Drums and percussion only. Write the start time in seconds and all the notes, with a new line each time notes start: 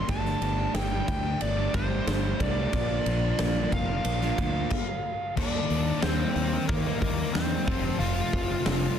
0.09 kick, ride
0.25 snare
0.42 ride
0.75 snare, ride
1.08 kick, ride
1.41 ride
1.74 kick, ride
2.07 snare, ride
2.40 kick, ride
2.73 kick, ride
3.06 ride
3.39 snare, ride
3.72 kick, ride
4.05 ride
4.21 snare
4.38 kick, ride
4.70 kick, crash
5.37 kick, crash
5.70 open hi-hat
6.02 snare, open hi-hat
6.36 open hi-hat
6.69 kick, open hi-hat
7.02 kick, open hi-hat
7.35 snare, open hi-hat
7.67 kick, open hi-hat
8.00 open hi-hat
8.33 kick
8.66 snare, open hi-hat